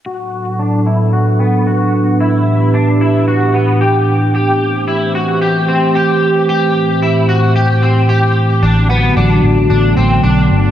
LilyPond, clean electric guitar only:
\new Staff \with { instrumentName = "Clean electric guitar" } { \time 4/4 \key b \phrygian \tempo 4 = 112 fis'4 d'8 e'8 fis'8 b8 fis'4 | e'4 d'8 e'8 fis'8 b8 g'4 | g'4 e'8 fis'8 g'8 c'8 g'4 | g'4 e'8 fis'8 g'8 c'8 g'4 |
d'8 b8 d'4 d'8 c'8 d'4 | }